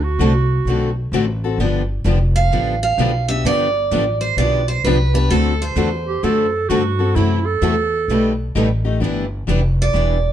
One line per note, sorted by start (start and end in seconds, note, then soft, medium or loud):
0.00 0.18 D2 medium
0.00 0.96 F#4 medium
0.19 0.64 C2 medium
0.19 0.31 D3 medium
0.19 0.31 A3 medium
0.19 0.31 C4 medium
0.19 0.31 F#4 medium
0.19 0.31 A4 medium
0.65 1.11 B1 medium
0.65 0.89 D3 medium
0.65 0.89 A3 medium
0.65 0.89 C4 medium
0.69 0.90 F#4 medium
0.69 0.89 A4 medium
1.12 1.57 A1 medium
1.12 1.24 D3 medium
1.12 1.24 A3 medium
1.12 1.25 C4 loud
1.12 1.25 F#4 loud
1.12 1.25 A4 loud
1.44 1.60 C4 soft
1.44 1.59 F#4 medium
1.44 1.59 A4 medium
1.58 2.03 G1 medium
1.58 1.81 D3 medium
1.58 1.81 F3 medium
1.58 1.81 B3 medium
1.58 1.81 D4 medium
1.58 1.81 G4 medium
2.05 2.50 F1 medium
2.05 2.17 D3 medium
2.05 2.17 F3 medium
2.05 2.18 B3 medium
2.05 2.18 D4 medium
2.05 2.18 G4 medium
2.36 2.79 F5 medium
2.51 2.96 A1 medium
2.51 2.74 D3 medium
2.51 2.74 F3 medium
2.51 2.74 B3 medium
2.51 2.74 D4 medium
2.51 2.74 G4 medium
2.83 3.26 F5 loud
2.98 3.43 B1 medium
2.98 3.10 D3 medium
2.98 3.11 F3 medium
2.98 3.10 B3 medium
2.98 3.11 D4 loud
2.98 3.11 G4 medium
3.28 3.45 B3 soft
3.28 3.44 D4 medium
3.28 3.44 G4 medium
3.28 3.44 E5 loud
3.45 3.90 G1 medium
3.45 3.67 D3 medium
3.45 3.67 F3 medium
3.45 3.67 B3 medium
3.45 3.67 D4 medium
3.45 3.67 G4 medium
3.45 4.20 D5 loud
3.91 4.36 A1 medium
3.91 4.03 D3 medium
3.91 4.04 F3 medium
3.91 4.03 B3 medium
3.91 4.04 D4 medium
3.91 4.04 G4 medium
4.21 4.38 C5 medium
4.37 4.82 B1 medium
4.37 4.60 D3 medium
4.37 4.60 F3 medium
4.37 4.60 B3 medium
4.37 4.60 D4 medium
4.37 4.60 G4 medium
4.37 4.68 D5 medium
4.68 4.84 C5 medium
4.84 5.29 C2 medium
4.84 4.97 D3 medium
4.84 4.97 F3 loud
4.84 4.97 B3 medium
4.84 4.97 D4 medium
4.84 4.97 G4 loud
4.84 5.12 B4 medium
5.14 5.30 B3 soft
5.14 5.30 D4 medium
5.14 5.30 G4 medium
5.14 5.32 B4 medium
5.30 5.75 D2 medium
5.30 5.52 D3 medium
5.30 5.52 A3 medium
5.30 5.53 C4 medium
5.30 5.53 F#4 medium
5.30 5.61 A4 loud
5.30 5.53 A4 medium
5.62 6.50 C5 medium
5.76 6.21 E2 loud
5.76 5.88 D3 medium
5.76 5.88 A3 medium
5.76 5.89 C4 medium
5.76 5.89 F#4 medium
5.76 5.89 A4 medium
6.08 6.26 G4 medium
6.23 6.68 F#2 medium
6.23 6.45 D3 medium
6.23 6.45 A3 medium
6.23 6.45 C4 medium
6.23 6.46 F#4 medium
6.23 6.45 A4 medium
6.23 6.70 A4 medium
6.69 7.15 G2 medium
6.69 6.81 D3 medium
6.69 6.82 A3 loud
6.69 6.81 C4 medium
6.69 7.17 F#4 medium
6.69 6.82 F#4 loud
6.69 6.82 A4 medium
6.99 7.16 C4 soft
6.99 7.15 F#4 medium
6.99 7.15 A4 medium
7.15 7.61 F#2 medium
7.15 7.37 C3 medium
7.15 7.38 E3 medium
7.15 7.38 F#3 medium
7.15 7.38 A3 medium
7.15 7.39 C4 medium
7.15 7.47 E4 medium
7.15 7.38 E4 medium
7.15 7.38 F#4 medium
7.15 7.39 A4 medium
7.46 8.39 A4 loud
7.61 8.07 E2 medium
7.61 7.74 C3 medium
7.61 7.74 E3 medium
7.61 7.74 F#3 medium
7.61 7.74 A3 medium
7.61 7.74 C4 medium
7.61 7.74 E4 medium
7.61 7.74 F#4 medium
7.61 7.75 A4 loud
8.08 8.54 B1 medium
8.08 8.32 B2 medium
8.08 8.32 G3 medium
8.08 8.32 A3 medium
8.08 8.32 D#4 medium
8.08 8.32 G4 medium
8.08 8.32 A4 medium
8.08 8.32 B4 medium
8.55 9.00 A1 medium
8.55 8.67 B2 medium
8.55 8.67 G3 medium
8.55 8.67 A3 medium
8.55 8.67 D#4 loud
8.55 8.67 G4 loud
8.55 8.68 A4 medium
8.55 8.68 B4 medium
8.85 9.01 A3 soft
8.85 9.01 D#4 soft
8.85 9.00 G4 medium
9.00 9.46 G1 medium
9.00 9.23 E3 medium
9.00 9.25 G3 medium
9.00 9.24 B3 medium
9.00 9.24 D4 medium
9.00 9.25 E4 medium
9.00 9.23 G4 medium
9.05 9.25 B4 medium
9.47 9.93 F1 medium
9.47 9.59 E3 medium
9.47 9.60 G3 medium
9.47 9.60 B3 medium
9.47 9.60 D4 medium
9.47 9.60 E4 medium
9.47 9.60 G4 medium
9.47 9.61 B4 medium
9.82 10.32 D5 medium
9.93 10.32 E1 medium
9.93 10.16 E3 medium
9.93 10.17 G3 medium
9.93 10.16 B3 medium
9.93 10.16 D4 medium
9.93 10.17 E4 medium
9.93 10.17 G4 medium
9.93 10.17 B4 medium